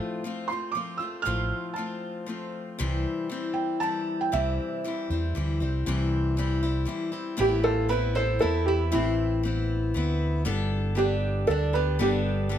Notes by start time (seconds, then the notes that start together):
Already playing: A2 F3 A3 C4 F4
0.24 F3 A3 C4 F4
0.48 F4 C6
0.52 A3 C4
0.72 F3 A3 D6
0.77 C4 F4
0.98 C4 F4 E6
1.02 A3
1.22 A2 F3 F6
1.26 A1 A3 C4 F4
1.74 F3 A5
1.78 A3 C4 F4
2.26 F3 A3 C4 F4
2.79 C2 C3 E3 G3 C4 E4
3.30 E3 G3 C4 E4
3.54 G5
3.80 E3 G3 C4 E4 A5
4.21 G5
4.32 C2 C3 E3 G3 C4 E4 E5
4.84 E3 G3 C4 E4
5.10 E2 G3 C4 E4
5.35 D2 E3 G3 C4 E4
5.60 C2 G3 C4 E4
5.86 C2 C3 E3 G3 C4 E4
6.37 E3 G3 C4 E4
6.63 G3 C4 E4
6.85 E3 G3 C4 E4
7.12 G3 C4 E4
7.37 A1 A2 E3 B3 C4 E4 G4
7.64 F4 A4
7.89 E3 B3 C4 E4 B4
8.15 B3 C4 E4 A4 C5
8.39 E3 B3 C4 E4 A4
8.43 E2
8.66 E4 G4
8.92 A1 A2 E3 C4 E4
9.43 E3 B3 C4 E4
9.94 D2 E3 B3 C4 E4
10.45 G1 G3 B3 D4 A4
10.95 G3 B3 D4 G4 A4
11.47 D2 G3 B3 D4 A4
11.73 B3 D4 G4 A4 B4
11.99 G1 G3 B3 D4 G4 A4
12.49 G3 B3 D4 A4